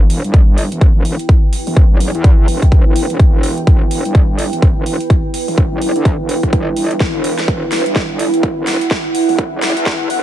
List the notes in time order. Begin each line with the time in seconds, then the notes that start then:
Already playing: E1 E4 B4 G5
0.10 open hi-hat
0.24 G1, closed hi-hat
0.34 kick, closed hi-hat
0.58 open hi-hat
0.72 E1, closed hi-hat
0.81 kick, closed hi-hat
0.96 E1
1.05 open hi-hat
1.19 closed hi-hat
1.29 kick, closed hi-hat
1.53 open hi-hat
1.67 E1, open hi-hat
1.77 kick
1.91 F#1
2.00 open hi-hat
2.15 E2, closed hi-hat
2.24 kick, closed hi-hat
2.48 E1, open hi-hat
2.62 kick, closed hi-hat
2.72 kick, closed hi-hat
2.86 E1
2.96 open hi-hat
3.10 E1, closed hi-hat
3.19 E1, kick, closed hi-hat
3.43 open hi-hat
3.58 closed hi-hat
3.67 E1, kick, closed hi-hat
3.91 open hi-hat
4.05 G1, closed hi-hat
4.15 kick, closed hi-hat
4.39 open hi-hat
4.53 E1, closed hi-hat
4.62 kick, closed hi-hat
4.77 E1
4.86 open hi-hat
5.01 closed hi-hat
5.10 kick, closed hi-hat
5.34 open hi-hat
5.48 E1, open hi-hat
5.58 kick
5.72 F#1
5.82 open hi-hat
5.96 D2, closed hi-hat
6.05 kick, closed hi-hat
6.20 E1
6.29 open hi-hat
6.43 E1, kick, closed hi-hat
6.53 G1, kick, closed hi-hat
6.76 G1, open hi-hat
6.91 closed hi-hat
7.00 E1 F#5, kick, snare, closed hi-hat
7.24 open hi-hat
7.39 snare, closed hi-hat
7.48 E1, kick, closed hi-hat
7.72 snare, open hi-hat
7.86 G1, closed hi-hat
7.96 kick, snare, closed hi-hat
8.19 open hi-hat
8.34 E1, closed hi-hat
8.43 kick, closed hi-hat
8.57 E1
8.67 snare, open hi-hat
8.81 closed hi-hat
8.91 kick, snare, closed hi-hat
9.15 open hi-hat
9.29 E1, open hi-hat
9.39 kick, closed hi-hat
9.53 F#1
9.62 snare, open hi-hat
9.77 E2, closed hi-hat
9.86 kick, snare, closed hi-hat
10.10 E1, open hi-hat